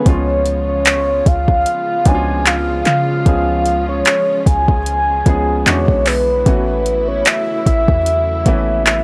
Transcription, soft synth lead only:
0.07 0.68 C#5 medium
0.69 1.28 C#5 loud
1.27 2.08 F5 loud
2.07 2.48 G#5 loud
2.47 2.86 F5 loud
2.87 3.84 F5 loud
3.89 4.43 C#5 loud
4.47 5.63 G#5 loud
5.67 6.08 C#5 loud
6.07 7.08 B4 loud
7.08 7.28 C#5 medium
7.27 7.66 E5 loud
7.67 8.83 E5 loud
8.87 9.04 E5 loud

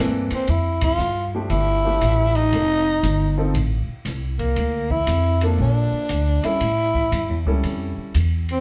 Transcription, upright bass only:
0.00 0.29 G2 medium
0.31 muted upright bass stroke soft
0.48 0.98 F2 medium
0.98 1.48 G2 medium
1.50 2.00 G1 medium
2.01 2.51 A1 medium
2.52 3.02 F1 medium
3.03 3.53 G1 medium
3.54 3.86 A1 medium
3.87 muted upright bass stroke soft
4.05 4.55 C2 medium
4.56 5.06 D2 medium
5.07 5.57 F2 medium
5.58 5.90 A#1 medium
5.92 muted upright bass stroke soft
6.09 6.41 D2 medium
6.44 muted upright bass stroke soft
6.61 7.11 A2 medium
7.12 7.29 G2 medium
7.29 7.45 E2 soft
7.45 7.62 C#2 medium
7.63 7.95 F2 medium
7.97 muted upright bass stroke soft
8.14 8.60 E2 medium

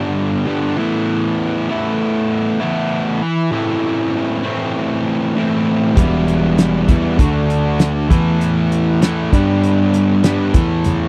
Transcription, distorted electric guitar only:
0.00 0.45 G2 medium
0.00 0.45 D3 medium
0.00 0.45 G3 medium
0.00 0.45 B3 medium
0.00 0.46 D4 medium
0.46 0.75 G2 medium
0.46 0.76 D3 medium
0.46 0.76 G3 medium
0.46 0.77 B3 medium
0.46 0.77 D4 medium
0.77 1.68 E3 medium
0.77 1.69 A3 medium
0.77 1.68 B3 medium
0.77 1.71 E4 loud
1.69 2.63 E3 medium
1.69 2.59 A3 medium
1.69 2.60 B3 medium
1.69 2.59 E4 medium
2.60 3.51 E3 medium
2.60 3.21 A3 medium
2.60 3.21 B3 medium
2.60 3.54 E4 medium
3.52 4.42 A2 medium
3.52 4.42 E3 medium
3.52 4.42 A3 medium
3.52 4.43 C4 medium
3.52 4.42 E4 loud
4.43 5.34 A2 medium
4.43 5.35 E3 medium
4.43 5.34 A3 medium
4.43 5.34 C4 medium
4.43 5.34 E4 medium
5.35 5.95 A2 medium
5.35 5.95 E3 medium
5.35 5.96 A3 medium
5.35 5.96 C4 medium
5.35 5.96 E4 medium
5.96 6.86 E3 medium
5.96 6.87 G3 medium
5.96 6.88 B3 medium
5.96 6.87 E4 loud
6.88 7.17 E3 medium
6.88 7.18 G3 medium
6.88 7.17 B3 medium
6.88 7.17 E4 medium
7.17 8.08 D3 medium
7.17 8.09 A3 medium
7.17 8.09 D4 medium
7.17 8.10 F#4 medium
8.09 9.00 E3 loud
8.09 9.00 A3 medium
8.09 9.00 E4 loud
8.09 9.01 A4 medium
8.09 9.03 B4 loud
9.01 9.31 E3 medium
9.01 9.31 A3 medium
9.01 9.31 E4 medium
9.01 9.32 A4 medium
9.01 9.34 B4 medium
9.32 10.22 G3 medium
9.32 10.25 B3 medium
9.32 10.23 D4 medium
9.32 10.24 G4 medium
9.32 10.27 B4 medium
10.24 10.53 G3 medium
10.24 10.55 B3 medium
10.24 10.54 D4 medium
10.24 10.54 G4 medium
10.24 10.57 B4 loud
10.55 11.08 E3 loud
10.55 11.08 A3 medium
10.55 11.08 E4 medium
10.55 11.08 A4 loud
10.55 11.08 B4 medium

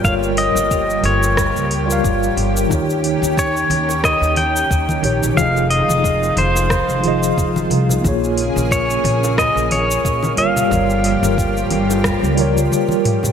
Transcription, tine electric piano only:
0.00 1.86 G3 medium
0.00 0.03 F4 medium
0.00 1.67 F4 medium
0.00 0.05 A#4 medium
0.00 0.08 C#5 medium
0.05 1.68 A#4 medium
0.05 1.69 C#5 medium
1.86 2.66 G3 loud
1.86 2.66 F4 medium
1.90 2.68 A#4 medium
1.90 2.69 F5 loud
2.67 4.99 D#3 medium
2.67 5.00 D#4 medium
2.72 5.01 G4 medium
2.72 5.02 C#5 loud
5.02 5.33 D#3 medium
5.02 5.33 D#4 medium
5.02 5.34 G4 medium
5.02 5.35 C#5 medium
5.35 6.99 F3 medium
5.35 7.00 F4 medium
5.39 7.01 G#4 medium
5.39 7.03 D#5 medium
7.00 7.99 F3 medium
7.00 8.00 F4 medium
7.05 8.01 G#4 medium
7.05 8.02 D#5 loud
8.01 10.33 A#3 loud
8.01 10.34 F4 medium
8.06 10.35 G#4 medium
8.06 10.36 C#5 loud
10.36 10.67 G3 medium
10.36 10.67 F4 medium
10.36 10.68 A#4 medium
10.36 10.68 C#5 medium
10.68 12.33 G3 medium
10.68 12.34 F4 medium
10.73 12.35 A#4 medium
10.73 12.36 C#5 medium
12.34 13.32 G3 medium
12.34 13.32 F4 medium
12.39 13.32 A#4 medium
12.39 13.32 C#5 medium

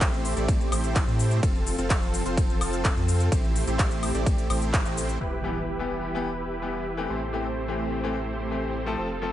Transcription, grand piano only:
5.44 5.57 E3 medium
5.44 5.57 G3 medium
5.44 5.57 B3 medium
5.44 5.57 G4 medium
5.79 6.12 E3 medium
5.79 6.12 G3 medium
5.79 6.13 B3 medium
5.79 6.13 G4 medium
6.15 6.27 E3 medium
6.15 6.28 G3 medium
6.15 6.28 B3 medium
6.15 6.28 G4 loud
6.62 6.82 E3 medium
6.62 6.82 G3 medium
6.62 6.82 B3 medium
6.62 6.83 G4 medium
6.97 7.17 E3 medium
6.97 7.18 A3 medium
6.97 7.18 C4 medium
6.97 7.18 G4 loud
7.33 7.45 E3 medium
7.33 7.46 A3 medium
7.33 7.46 C4 medium
7.33 7.46 G4 medium
7.68 8.01 E3 medium
7.68 8.01 A3 medium
7.68 8.02 C4 medium
7.68 8.02 G4 medium
8.04 8.16 E3 medium
8.04 8.17 A3 medium
8.04 8.17 C4 medium
8.04 8.17 G4 loud
8.51 8.71 E3 medium
8.51 8.71 A3 medium
8.51 8.71 C4 medium
8.51 8.72 G4 medium
8.86 9.06 F3 medium
8.86 9.07 A3 medium
8.86 9.07 C4 medium
8.86 9.07 A4 loud
9.22 9.32 F3 medium
9.22 9.32 A3 medium
9.22 9.32 C4 medium
9.22 9.32 A4 medium

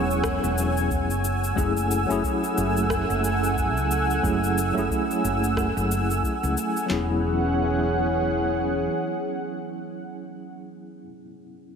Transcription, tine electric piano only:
0.00 1.25 F#3 medium
0.00 1.26 B3 medium
0.00 1.25 C#4 medium
0.00 1.25 E4 medium
0.00 1.26 G#4 medium
1.56 2.04 F#3 medium
1.56 2.04 A3 medium
1.56 2.05 C#4 medium
1.56 2.05 E4 medium
1.56 2.05 G#4 medium
2.07 4.19 F#3 medium
2.07 4.19 A3 medium
2.07 4.20 C#4 medium
2.11 4.21 E4 medium
2.11 4.21 G#4 loud
4.22 4.71 F#3 medium
4.22 4.71 A3 medium
4.22 4.72 C#4 medium
4.22 4.72 E4 medium
4.22 4.72 G#4 medium
4.74 6.85 F#3 medium
4.74 6.86 A3 medium
4.74 6.87 C#4 medium
4.78 6.88 E4 medium
4.78 6.88 G#4 medium
6.86 11.01 F#3 medium
6.86 11.01 B3 medium
6.86 11.02 C#4 medium
6.92 11.03 E4 medium
6.92 11.04 G#4 medium

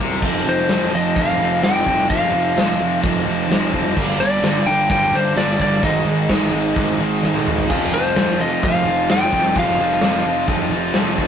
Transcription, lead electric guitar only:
0.49 0.95 C5 medium
0.95 1.18 D#5 medium
1.19 1.61 F5 loud
1.64 2.10 G5 medium
2.10 3.00 F5 loud
4.20 4.68 D5 medium
4.66 4.89 G5 loud
4.91 5.14 G5 loud
5.15 5.37 C5 medium
5.37 5.59 D5 medium
5.61 5.84 D5 medium
5.85 6.73 D#5 medium
7.94 8.41 C5 medium
8.41 8.64 D#5 medium
8.65 9.11 F5 loud
9.11 9.58 G5 loud
9.59 10.46 F5 loud

